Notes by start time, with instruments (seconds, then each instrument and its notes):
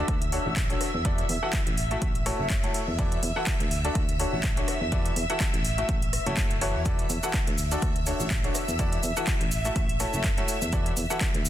Already playing: grand piano D3 D4 F#4 A4 D5, string machine E5 E6
0.08 fm bass D2, kick, cross-stick, closed hi-hat
0.22 closed hi-hat
0.32 grand piano D3 D4 F#4 A4 C#5, open hi-hat
0.46 fm bass A1
0.56 kick, clap, closed hi-hat
0.70 grand piano D3 D4 F#4 A4 C#5, closed hi-hat
0.81 cross-stick, open hi-hat
0.94 fm bass E2
1.05 grand piano E3 E4 F#4 A4 D5, kick, closed hi-hat
1.18 closed hi-hat
1.29 fm bass E2, open hi-hat
1.43 grand piano E3 E4 F#4 A4 F#5
1.53 kick, clap, closed hi-hat
1.67 fm bass A1, closed hi-hat
1.77 open hi-hat
1.91 grand piano A3 E4 F#4 A4 E5, closed hi-hat
2.02 fm bass A1, kick, closed hi-hat
2.15 closed hi-hat
2.26 grand piano A3 E4 F#4 A4 C#5, cross-stick, open hi-hat
2.39 fm bass F#1
2.50 kick, clap, closed hi-hat
2.63 grand piano A3 E4 F#4 A4 C#5, closed hi-hat
2.74 open hi-hat
2.88 fm bass E2
2.99 grand piano E3 E4 F#4 A4 D5, kick, closed hi-hat
3.12 closed hi-hat
3.23 fm bass E2, open hi-hat
3.36 grand piano E3 E4 F#4 A4 F#5
3.47 kick, clap, closed hi-hat
3.60 fm bass D2, closed hi-hat
3.71 open hi-hat
3.84 grand piano D3 D4 F#4 A4 D5, closed hi-hat
3.95 fm bass D2, kick, cross-stick, closed hi-hat
4.09 closed hi-hat
4.19 grand piano D3 D4 F#4 A4 C#5, open hi-hat
4.33 fm bass A1
4.44 kick, clap, closed hi-hat
4.57 grand piano D3 D4 F#4 A4 C#5, closed hi-hat
4.68 cross-stick, open hi-hat
4.81 fm bass E2
4.92 grand piano E3 E4 F#4 A4 D5, kick, closed hi-hat
5.05 closed hi-hat
5.16 fm bass E2, open hi-hat
5.30 grand piano E3 E4 F#4 A4 F#5, closed hi-hat
5.40 kick, clap, closed hi-hat
5.54 fm bass A1, closed hi-hat
5.65 open hi-hat
5.78 grand piano A3 E4 F#4 A4 E5, closed hi-hat
5.89 fm bass A1, kick, closed hi-hat
6.02 closed hi-hat
6.13 cross-stick, open hi-hat
6.26 fm bass F#1, grand piano A3 E4 F#4 A4 C#5, closed hi-hat
6.37 kick, clap, closed hi-hat
6.51 closed hi-hat
6.61 grand piano E3 E4 F#4 A4 C#5, open hi-hat
6.75 fm bass E2
6.85 grand piano E3 E4 F#4 A4 D5, string machine E5 E6, kick, closed hi-hat, cabasa
6.99 closed hi-hat
7.10 fm bass E2, open hi-hat, cabasa
7.23 grand piano E3 E4 F#4 A4 F#5, cabasa
7.34 kick, clap, closed hi-hat, cabasa
7.47 fm bass D2, closed hi-hat
7.58 open hi-hat, cabasa
7.72 grand piano D3 D4 F#4 A4 D5, closed hi-hat, cabasa
7.82 fm bass D2, kick, cross-stick, closed hi-hat, cabasa
7.96 closed hi-hat
8.06 grand piano D3 D4 F#4 A4 C#5, open hi-hat, cabasa
8.20 fm bass A1, cabasa
8.31 kick, clap, closed hi-hat, cabasa
8.44 grand piano D3 D4 F#4 A4 C#5, closed hi-hat
8.55 cross-stick, open hi-hat, cabasa
8.68 fm bass E2, cabasa
8.79 grand piano E3 E4 F#4 A4 D5, kick, closed hi-hat, cabasa
8.93 closed hi-hat
9.03 fm bass E2, open hi-hat, cabasa
9.17 grand piano E3 E4 F#4 A4 F#5, cabasa
9.27 kick, clap, closed hi-hat, cabasa
9.41 fm bass A1, closed hi-hat
9.52 open hi-hat, cabasa
9.65 grand piano A3 E4 F#4 A4 E5, closed hi-hat, cabasa
9.76 fm bass A1, kick, closed hi-hat, cabasa
9.89 closed hi-hat
10.00 grand piano A3 E4 F#4 A4 C#5, cross-stick, open hi-hat, cabasa
10.13 fm bass F#1, cabasa
10.24 kick, clap, closed hi-hat, cabasa
10.38 grand piano A3 E4 F#4 A4 C#5, closed hi-hat
10.48 open hi-hat, cabasa
10.62 fm bass E2, cabasa
10.73 grand piano E3 E4 F#4 A4 D5, kick, closed hi-hat, cabasa
10.86 closed hi-hat
10.97 fm bass E2, open hi-hat, cabasa
11.10 grand piano E3 E4 F#4 A4 F#5, cabasa
11.21 kick, clap, closed hi-hat, cabasa
11.34 fm bass D2, closed hi-hat
11.45 open hi-hat, cabasa